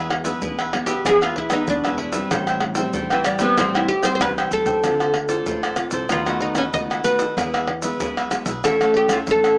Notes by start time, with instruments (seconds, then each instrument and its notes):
Already playing: upright bass E2, nylon-string guitar E3 G#3 B3 E4, oud E4
0.10 muted cavaquinho stroke, pandeiro, tamborim
0.24 nylon-string guitar G#3 B3 E4, cavaquinho G#4 B4 E5, pandeiro, shaker
0.42 upright bass E2, nylon-string guitar B2, cavaquinho E4 G#4 B4 E5, pandeiro, shaker, surdo
0.59 cavaquinho G#4 B4 E5, pandeiro, tamborim, shaker
0.73 nylon-string guitar G#3 B3 E4, muted cavaquinho stroke, pandeiro, tamborim
0.86 oud G4, cavaquinho G#4 B4 E5, pandeiro, shaker
1.05 upright bass E2, nylon-string guitar E3 G#3 B3 E4, cavaquinho E4 G#4 B4 E5, oud G#4, pandeiro, tamborim, shaker, surdo
1.21 oud F4, cavaquinho G#4 B4 E5, pandeiro, tamborim, shaker
1.36 oud E4, pandeiro, surdo
1.50 nylon-string guitar G#3 B3 E4, oud D#4, cavaquinho G#4 B4 E5, pandeiro, tamborim, shaker
1.68 upright bass E2, nylon-string guitar B2, oud D4, pandeiro, shaker, surdo
1.84 nylon-string guitar G#3 B3 E4, cavaquinho G#4 B4 E5, pandeiro, tamborim, shaker
1.97 cavaquinho E4 G#4 B4 E5, pandeiro
2.12 nylon-string guitar G3 C4 E4, cavaquinho G#4 B4 E5, pandeiro, shaker
2.31 upright bass A1, nylon-string guitar A2, cavaquinho A4 C5 E5 G5, pandeiro, tamborim, shaker, surdo
2.47 cavaquinho C5 E5 G5, pandeiro, tamborim, shaker
2.60 muted cavaquinho stroke, pandeiro, tamborim
2.75 nylon-string guitar G3 C4 E4, cavaquinho C5 E5 G5, pandeiro, shaker
2.94 upright bass A1, nylon-string guitar E3, cavaquinho A4 C5 E5 G5, pandeiro, shaker, surdo
3.10 oud E3, nylon-string guitar G3 C4 E4, cavaquinho C5 E5 G5, pandeiro, tamborim, shaker
3.24 oud G3, muted cavaquinho stroke, pandeiro, tamborim, shaker
3.39 nylon-string guitar G3 C4 E4, oud B3, cavaquinho C5 E5 G5, pandeiro, shaker
3.57 upright bass A1, nylon-string guitar A2 G3 C4 E4, oud C4, cavaquinho A4 C5 E5 G5, pandeiro, tamborim, shaker, surdo
3.74 oud E4, cavaquinho C5 E5 G5, pandeiro, tamborim, shaker
3.88 oud G4, pandeiro
4.03 nylon-string guitar G3 C4 E4, cavaquinho C5 E5 G5, oud C5, pandeiro, tamborim, shaker
4.15 oud C5
4.20 upright bass C2, nylon-string guitar E3, oud B4, pandeiro, tamborim, shaker, surdo
4.38 cavaquinho C5 E5 G5, pandeiro, tamborim, shaker
4.51 upright bass D2, nylon-string guitar G3 C4 E4, cavaquinho A4 C5 E5 G5, oud A4, pandeiro, shaker, surdo
4.66 cavaquinho C5 E5 G5, pandeiro, shaker, surdo
4.83 upright bass D2, nylon-string guitar D3 C4 F4 A4, cavaquinho F4 A4 C5 D5, pandeiro, tamborim, shaker, surdo
5.00 cavaquinho A4 C5 D5, pandeiro, tamborim, shaker
5.14 muted cavaquinho stroke, pandeiro, tamborim
5.29 nylon-string guitar C4 F4 A4, cavaquinho A4 C5 D5, pandeiro, shaker
5.46 upright bass A1, nylon-string guitar A2, cavaquinho F4 A4 C5 D5, pandeiro, shaker, surdo
5.63 cavaquinho A4 C5 D5, pandeiro, tamborim, shaker
5.76 nylon-string guitar C4 F4 A4, muted cavaquinho stroke, pandeiro, tamborim, shaker
5.91 upright bass C2, cavaquinho A4 C5 D5, pandeiro, shaker
6.09 upright bass D#2, nylon-string guitar D#3 A3 B3 F#4, cavaquinho D#4 A4 B4 D#5, oud F4, pandeiro, tamborim, shaker, surdo
6.25 nylon-string guitar A3 B3 F#4, cavaquinho A4 B4 D#5, pandeiro, tamborim, shaker
6.40 oud D#4, pandeiro
6.55 upright bass D#2, oud C#4, cavaquinho A4 B4 D#5, pandeiro, tamborim, shaker
6.73 upright bass C#2, nylon-string guitar D#3 A3 B3 F#4, oud D#5, pandeiro, shaker, surdo
6.90 cavaquinho A4 B4 D#5, pandeiro, tamborim, shaker
7.04 nylon-string guitar A3 B3 F#4, cavaquinho D#4 A4 B4 D#5, oud B4, pandeiro, shaker
7.19 cavaquinho A4 B4 D#5, pandeiro, shaker
7.37 upright bass E2, nylon-string guitar E3 G#3 B3 E4, cavaquinho E4 G#4 B4 E5, pandeiro, tamborim, shaker, surdo
7.54 cavaquinho G#4 B4 E5, pandeiro, tamborim, shaker
7.67 muted cavaquinho stroke, pandeiro, tamborim
7.82 nylon-string guitar G#3 B3 E4, cavaquinho G#4 B4 E5, pandeiro, shaker
8.00 upright bass B1, nylon-string guitar B2, cavaquinho E4 G#4 B4 E5, pandeiro, shaker, surdo
8.17 cavaquinho G#4 B4 E5, pandeiro, tamborim, shaker
8.31 nylon-string guitar G#3 B3 E4, muted cavaquinho stroke, pandeiro, tamborim, shaker
8.46 upright bass B1, cavaquinho G#4 B4 E5, pandeiro, shaker
8.64 upright bass E2, nylon-string guitar E3 A3 C#4 E4, cavaquinho E4 A4 C#5 E5, oud A4, pandeiro, tamborim, shaker, surdo
8.81 nylon-string guitar A3 C#4 E4, cavaquinho A4 C#5 E5, pandeiro, tamborim, shaker
8.94 oud G4, pandeiro
9.08 upright bass E2, cavaquinho C#5 E5, pandeiro, tamborim, shaker
9.12 oud F4, cavaquinho A4
9.27 upright bass A1, nylon-string guitar E3 A3 C#4 E4, oud A4, pandeiro, shaker, surdo
9.44 cavaquinho A4 C#5 E5, pandeiro, tamborim, shaker